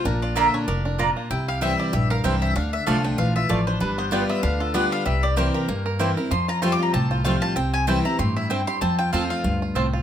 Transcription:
Already playing: F3
0.05 A#1 A#2 D4 A#4
0.22 F4 D5
0.36 D3 A#3 D4 F4 D5 E5 A#5
0.54 D4 C#5
0.68 F1 A2 A#4 D5
0.85 D4
0.98 A#2 A#3 F4 D5 A#5
1.17 A#3
1.30 C2 C3 E4 G5
1.48 G4 F5
1.61 E3 G3 C4 E4 C5 E5 G5
1.79 E4 D5
1.93 A#1 G2 G4 E5
2.10 A#4 F5
2.24 C2 E3 G3 C4 E4 G4 C5 G5
2.42 C4 E5
2.56 D2 D3 D4 F5
2.73 E5
2.86 C2 D3 F3 A3 D4 F4 D5 F5 A5
3.04 D4 G5
3.18 A#1 E3 F4 F5
3.36 F4 E5
3.49 A1 F3 A3 F4 D5 A5
3.67 D4 C5
3.80 G1 G3 D4 B4
3.98 B3 C5
4.11 G3 B3 F4 B4 D5 G5
4.29 B3 E5
4.43 D2 D3 D4 F5
4.60 F4 A4
4.74 G3 B3 F4 B4 D5 G5
4.92 D4 F5
5.05 C2 C3 G3 E5
5.23 G4 D5
5.36 E3 A#3 C4 E4 A#4 C5 G5
5.54 G4 A#4
5.68 G2 A#3
5.86 A#4
5.99 E3 A#3 C4 E4 C5 G5
6.17 C4 E4 A#4
6.31 F2 F3 C6
6.48 F4 A#5
6.62 F3 G3 A3 C4 F4 C5 G5 C6
6.72 D6
6.79 F4 A#5
6.93 C2 A2 C4 A5
7.11 F4 C5
7.24 F3 G3 A3 C4 F4 C5 F5 G5
7.42 F4 A5
7.56 C2 C3 C4 G5
7.74 G4 G#5
7.87 E3 G3 C4 E4 C5 G5 A5
8.05 C4 E4 A#5
8.19 G2 A2 G4 C6
8.36 E4 E5
8.50 G2 C4 E4 C5 G5
8.67 G4 C6
8.81 F2 C4 A5
8.99 F4 G5
9.13 E2 F3 A3 C4 F4 C5 F5 A5
9.30 F4 F5
9.44 D2 G2 F4
9.62 F4
9.75 C2 A2 C4 F4 C5 A5
9.93 F4

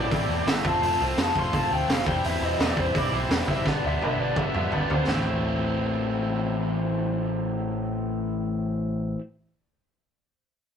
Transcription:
Already playing: A2 E3 A3 C4 E4 D5
0.11 A1 A2 E3 A3 C4 E4, kick, open hi-hat
0.28 E2 A2 E3 A3 C4 E4
0.46 G1 A2 E3 A3 C4 E4 E5, snare, open hi-hat
0.64 F1 F3 A3 C4 F4 A5, kick
0.82 F1 F3 A3 C4 F4, open hi-hat
1.00 C2 F3 A3 C4 F4
1.17 F1 F3 A3 C4 F4, snare, open hi-hat
1.22 A5
1.36 F1 F3 A3 C4 F4 C6, kick
1.52 F1 F3 A3 C4 F4 A5, kick, open hi-hat
1.70 D2 F3 A3 C4 F4 G5
1.87 F1 F3 A3 C4 F4, snare, open hi-hat
1.92 F5
2.05 E1 E3 G3 C4 E4 G5, kick
2.22 E1 E3 G3 C4 E4 E5, open hi-hat
2.41 E1 E3 G3 C4 E4 D#5
2.59 E1 E3 G3 C4 E4, snare, open hi-hat
2.63 D5
2.77 E1 E3 G3 C4 E4, kick
2.81 C5
2.94 E1 E3 G3 C4 E4, kick, open hi-hat
2.98 D5
3.12 B1 E3 G3 C4 E4 C5
3.29 E1 E3 G3 C4 E4, snare, open hi-hat
3.48 F#1 E3 G3 C4 E4 E5, kick
3.65 G1 G2 D3 G3 B3 D4 D5, kick, snare
3.84 D2 G2 D3 G3 B3 D4 E5
4.01 G1 G2 D3 G3 B3 D4 E5, high tom
4.18 G1 G2 D3 G3 B3 D4 D5
4.36 G1 G2 D3 G3 B3 D4 E5, kick, mid tom
4.54 F2 G2 D3 G3 B3 D4 E5, mid tom
4.70 G1 G2 D3 G3 B3 D4 D5, floor tom
4.90 D2 G2 D3 G3 B3 D4 C5, floor tom
5.07 A1 A2 E3 A3 C4 E4, snare, floor tom

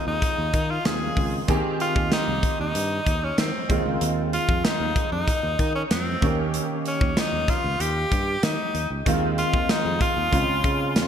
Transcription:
Already playing: D#3 G#3 C4 F4
0.07 D#2 D#4
0.22 kick, closed hi-hat
0.38 D#2
0.53 D#3, kick, closed hi-hat
0.71 F4
0.85 D#2 D#3 G#3 C4 F4 G#4, snare, closed hi-hat, tambourine
1.17 C#2, kick, open hi-hat
1.48 D#2 D#3 C4 G4 G#4, kick, closed hi-hat
1.80 F4, closed hi-hat
1.96 D#2, kick
2.12 D#4, snare, closed hi-hat, tambourine
2.28 C2
2.43 kick, closed hi-hat
2.59 D#2 D#4
2.75 G2, closed hi-hat
3.06 D#2, kick, closed hi-hat
3.24 C#4
3.38 D#3 C4, snare, closed hi-hat, tambourine
3.69 D#2 D#3 G#3 C4 F4, kick, closed hi-hat
3.86 C#2
4.01 D#2, closed hi-hat
4.33 F4, closed hi-hat
4.49 F2, kick
4.65 D#4, snare, closed hi-hat, tambourine
4.80 D#2
4.96 kick, closed hi-hat
5.12 F2 D#4
5.28 kick, closed hi-hat
5.43 D#2
5.59 D#3, kick, closed hi-hat
5.76 C#4
5.91 F2 C4, snare, closed hi-hat, tambourine
6.21 D#2 D#3 A#3 C#4 G4, kick, closed hi-hat
6.54 closed hi-hat
6.86 C#4, closed hi-hat
7.01 D#2, kick
7.17 D#4, snare, closed hi-hat, tambourine
7.33 D#2
7.48 F4, kick, closed hi-hat
7.64 C#2
7.80 D#2 G4, closed hi-hat
8.12 G2, kick, closed hi-hat
8.43 D#3 D#4, snare, closed hi-hat, tambourine
8.74 D#2, closed hi-hat
8.90 C#2
9.06 D#2 D#3 G#3 C4 F4, kick, closed hi-hat
9.38 F4, closed hi-hat
9.54 D#2, kick
9.69 D#4, snare, closed hi-hat, tambourine
9.85 F2
10.01 F4, kick, closed hi-hat
10.17 D#2
10.32 C#2 C#3 G#3 C4 F4, kick, closed hi-hat
10.48 C#2
10.64 C#3, kick, closed hi-hat
10.96 F2, snare, closed hi-hat, tambourine

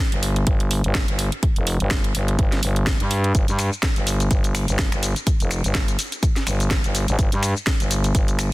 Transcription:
0.12 G1, closed hi-hat
0.23 open hi-hat
0.36 closed hi-hat
0.47 G1, kick, closed hi-hat
0.60 closed hi-hat
0.71 open hi-hat
0.84 G1, closed hi-hat
0.95 kick, snare, closed hi-hat
1.08 G1, closed hi-hat
1.19 open hi-hat
1.32 closed hi-hat
1.43 kick, closed hi-hat
1.56 F1, closed hi-hat
1.67 open hi-hat
1.80 G1, closed hi-hat
1.91 kick, snare, closed hi-hat
2.04 closed hi-hat
2.15 G1, open hi-hat
2.28 closed hi-hat
2.39 G1, kick, closed hi-hat
2.52 snare, open hi-hat
2.63 G1, open hi-hat
2.76 closed hi-hat
2.87 kick, snare, closed hi-hat
3.00 G2, closed hi-hat
3.11 open hi-hat
3.24 closed hi-hat
3.35 G1, kick, closed hi-hat, shaker
3.48 G2, closed hi-hat, shaker
3.59 finger snap, open hi-hat, shaker
3.73 shaker
3.83 kick, snare, closed hi-hat, shaker
3.96 G1, closed hi-hat, shaker
4.07 open hi-hat, shaker
4.20 closed hi-hat, shaker
4.31 G1, kick, closed hi-hat, shaker
4.44 closed hi-hat, shaker
4.55 finger snap, open hi-hat, shaker
4.68 G1, closed hi-hat, shaker
4.79 kick, snare, closed hi-hat, shaker
4.92 G1, finger snap, closed hi-hat, shaker
5.03 open hi-hat, shaker
5.16 closed hi-hat, shaker
5.27 kick, closed hi-hat, shaker
5.40 F1, closed hi-hat, shaker
5.51 finger snap, open hi-hat, shaker
5.64 G1, closed hi-hat, shaker
5.75 kick, snare, closed hi-hat, shaker
5.88 closed hi-hat, shaker
5.99 open hi-hat, shaker
6.12 closed hi-hat, shaker
6.23 kick, closed hi-hat, shaker
6.36 snare, open hi-hat, shaker
6.47 G1, finger snap, open hi-hat, shaker
6.60 closed hi-hat, shaker
6.71 kick, snare, closed hi-hat, shaker
6.84 G1, closed hi-hat, shaker
6.95 open hi-hat, shaker
7.08 G#1, closed hi-hat, shaker
7.19 G1, kick, closed hi-hat, shaker
7.32 G2, closed hi-hat, shaker
7.43 finger snap, open hi-hat, shaker
7.57 shaker
7.67 kick, snare, closed hi-hat, shaker
7.80 G1, closed hi-hat, shaker
7.91 open hi-hat, shaker
8.04 closed hi-hat, shaker
8.15 G1, kick, closed hi-hat, shaker
8.28 closed hi-hat, shaker
8.39 finger snap, open hi-hat, shaker

